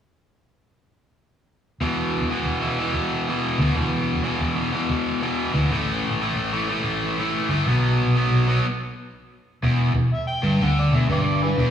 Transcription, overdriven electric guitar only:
1.81 2.29 E2 medium
1.81 2.29 B2 medium
1.81 2.31 E3 medium
2.30 2.61 E2 medium
2.30 2.61 B2 medium
2.30 2.62 E3 medium
2.61 2.78 E2 medium
2.61 2.79 B2 medium
2.61 2.80 E3 medium
2.79 3.27 E2 medium
2.79 3.27 B2 medium
2.79 3.29 E3 medium
3.28 3.58 E2 medium
3.28 3.58 B2 medium
3.28 3.60 E3 medium
3.59 3.74 E2 medium
3.59 3.75 B2 medium
3.59 3.76 E3 medium
3.76 4.23 E2 medium
3.76 4.23 B2 medium
3.76 4.24 E3 medium
4.24 4.55 E2 medium
4.24 4.55 B2 medium
4.24 4.56 E3 medium
4.56 4.72 E2 medium
4.56 4.73 B2 medium
4.56 4.73 E3 medium
4.73 5.21 E2 medium
4.73 5.21 B2 medium
4.73 5.22 E3 medium
5.22 5.53 E2 medium
5.22 5.53 B2 medium
5.22 5.54 E3 medium
5.54 5.71 E2 medium
5.54 5.71 B2 medium
5.54 5.71 E3 medium
5.72 6.20 A2 medium
5.72 6.20 E3 medium
5.72 6.21 A3 medium
6.21 6.51 A2 medium
6.21 6.52 E3 medium
6.21 6.53 A3 medium
6.52 6.68 A2 medium
6.52 6.69 E3 medium
6.52 6.69 A3 medium
6.70 7.17 A2 medium
6.70 7.18 E3 medium
6.70 7.19 A3 medium
7.18 7.49 A2 medium
7.18 7.50 E3 medium
7.18 7.50 A3 medium
7.50 7.66 A2 medium
7.50 7.67 E3 medium
7.50 7.67 A3 medium
7.67 8.15 B2 medium
7.67 8.15 F#3 medium
7.67 8.16 B3 loud
8.16 8.46 B2 medium
8.16 8.47 F#3 medium
8.16 8.48 B3 medium
8.48 8.64 B2 medium
8.48 8.64 F#3 medium
8.48 8.65 B3 medium
9.63 9.94 E2 loud
9.95 10.09 E2 medium
10.43 10.60 G2 medium
10.61 10.92 D3 medium
10.91 11.09 E2 medium
11.09 11.58 G2 loud
11.58 11.70 E2 loud

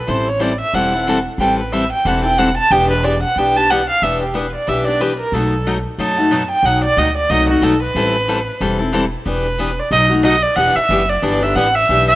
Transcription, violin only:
0.00 0.11 B4 medium
0.09 0.30 C5 medium
0.28 0.44 C#5 medium
0.42 0.60 D5 medium
0.61 0.76 E5 medium
0.74 1.07 F#5 medium
1.40 1.58 G5 medium
1.60 1.74 B4 soft
1.72 1.92 E5 medium
1.93 2.08 G5 medium
2.07 2.24 F#5 medium
2.24 2.40 G5 medium
2.38 2.57 F#5 medium
2.58 2.73 A5 loud
2.72 2.90 G5 medium
2.90 3.06 B4 medium
3.04 3.23 D5 medium
3.23 3.39 F#5 medium
3.38 3.58 G5 medium
3.57 3.72 A5 loud
3.71 3.89 F#5 medium
3.90 4.04 F5 medium
4.03 4.21 E5 medium
4.23 4.38 G4 soft
4.36 4.55 B4 medium
4.55 4.70 D5 medium
4.69 4.87 E5 medium
4.87 5.02 D5 medium
5.01 5.19 B4 medium
5.20 5.35 A#4 medium
5.34 5.66 A4 medium
6.00 6.48 A5 medium
6.51 6.67 G5 medium
6.65 6.84 F#5 medium
6.84 7.00 D5 medium
6.98 7.17 D#5 medium
7.17 7.31 D5 medium
7.30 7.49 D#5 medium
7.50 7.65 F#4 medium
7.63 7.82 A4 medium
7.83 8.57 B4 medium
9.28 9.81 B4 medium
9.79 9.92 D5 medium
9.92 10.04 D#5 medium
10.24 10.44 D#5 medium
10.43 10.58 D5 medium
10.56 10.77 F#5 loud
10.75 11.11 E5 medium
11.09 11.44 D5 medium
11.43 11.57 E5 medium
11.55 11.76 F#5 medium
11.75 12.08 E5 loud
12.08 12.15 E5 medium

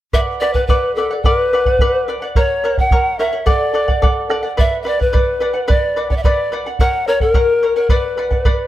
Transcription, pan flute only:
0.14 0.20 E5 loud
0.40 0.55 D5 medium
0.54 0.67 B4 medium
0.67 0.94 B4 medium
0.95 1.24 A4 medium
1.23 2.07 B4 medium
2.38 2.80 C#5 medium
2.79 3.21 F#5 medium
3.19 3.50 E5 medium
3.48 4.31 D5 medium
4.59 4.81 E5 loud
4.83 5.03 D5 medium
4.83 4.88 E5 medium
5.01 5.70 B4 medium
5.69 6.10 D5 medium
6.11 6.18 D5 medium
6.17 6.25 E5 medium
6.23 6.51 D5 medium
6.80 7.09 F#5 loud
7.08 7.23 C#5 medium
7.21 7.75 A#4 medium
7.76 7.92 A#4 medium
7.91 8.67 B4 medium

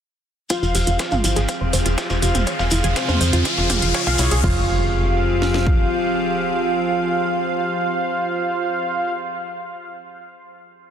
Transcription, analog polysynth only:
0.50 2.19 F4 medium
0.50 2.19 C5 medium
0.50 2.19 F5 medium
2.22 2.44 F4 medium
2.22 2.44 C5 medium
2.22 2.44 F5 medium
2.47 4.16 F4 medium
2.47 4.16 G#4 medium
2.47 4.16 F5 medium
4.19 4.41 C#4 medium
4.19 4.41 G#4 medium
4.19 4.41 C#5 medium
4.44 9.13 F4 medium
4.44 9.13 C5 medium
4.44 9.13 F5 loud

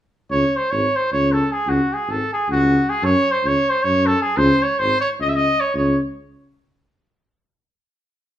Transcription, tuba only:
0.30 0.43 C#2 medium
0.72 0.84 G#1 medium
1.13 1.42 C#2 medium
1.66 1.79 C#2 medium
2.08 2.21 G#1 medium
2.49 2.79 C#2 medium
3.02 3.15 F#2 medium
3.44 3.57 C#2 medium
3.84 4.14 F#2 medium
4.37 4.51 C#2 loud
4.80 4.93 G#1 medium
5.19 5.50 C#2 medium
5.74 5.96 C#2 medium

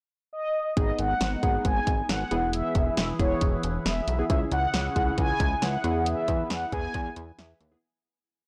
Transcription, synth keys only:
0.77 1.14 B3 medium
0.77 1.14 D#4 medium
0.77 1.14 G#4 medium
1.43 1.92 B3 medium
1.43 1.92 D#4 medium
1.43 1.92 G#4 medium
2.31 3.02 B3 medium
2.31 3.02 E4 medium
2.31 3.02 G#4 medium
3.19 3.68 B3 medium
3.19 3.68 E4 medium
3.19 3.69 G#4 medium
4.19 4.25 B3 medium
4.19 4.25 E4 medium
4.19 4.25 G#4 medium
4.30 4.67 C#4 medium
4.30 4.67 E4 medium
4.30 4.67 G#4 medium
4.96 5.45 C#4 medium
4.96 5.45 E4 medium
4.96 5.45 G#4 medium
5.84 6.55 B3 medium
5.84 6.55 E4 medium
5.84 6.55 G#4 medium
6.72 7.21 B3 medium
6.72 7.21 E4 medium
6.72 7.21 G#4 medium
7.39 7.80 E5 medium
7.72 7.78 B3 medium
7.72 7.78 E4 medium
7.72 7.78 G#4 medium

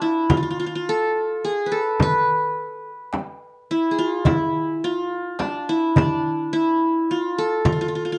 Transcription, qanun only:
0.00 1.21 D4 medium
0.00 0.36 E4 medium
0.30 0.37 F4 medium
0.37 0.42 F4 medium
0.43 0.50 F4 medium
0.50 0.59 F4 medium
0.60 0.66 F4 medium
0.66 0.75 F4 medium
0.75 2.09 F4 medium
0.89 1.51 A4 medium
1.45 1.78 G#4 medium
1.66 2.02 B4 medium
1.72 2.89 A4 medium
2.02 3.67 B4 loud
3.71 4.05 E4 medium
3.91 5.13 G#4 medium
3.99 4.32 F4 medium
4.26 4.90 E4 medium
4.84 5.75 F4 medium
5.39 5.98 D4 medium
5.69 6.53 E4 medium
5.98 7.47 D4 medium
6.53 7.17 E4 medium
7.11 7.65 F4 medium
7.38 8.18 A4 medium
7.65 7.72 F4 medium
7.72 7.81 F4 medium
7.81 7.88 F4 medium
7.88 7.95 F4 medium
7.95 8.05 F4 medium
8.05 8.12 F4 medium
8.12 8.18 F4 medium

